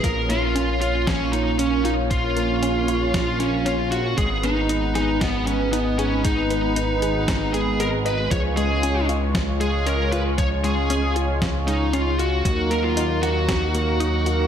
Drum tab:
HH |xxxxxxxx|xxxxxxxx|xxxxxxxx|xxxxxxxx|
SD |----o---|----o---|---oo---|----o---|
BD |o---o---|o---o---|o---o---|o---o---|

HH |xxxxxxxx|xxxxxxxx|xxxxxxxx|
SD |----o---|----o---|---oo---|
BD |o---o---|o---o---|o---o---|